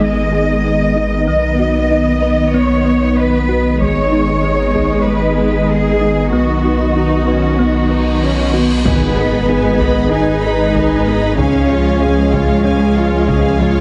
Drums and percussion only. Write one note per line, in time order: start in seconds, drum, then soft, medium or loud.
3.81 taiko medium
4.76 taiko soft
8.86 taiko medium
9.81 taiko medium
10.75 taiko medium
11.38 taiko medium
12.33 taiko medium
13.28 taiko medium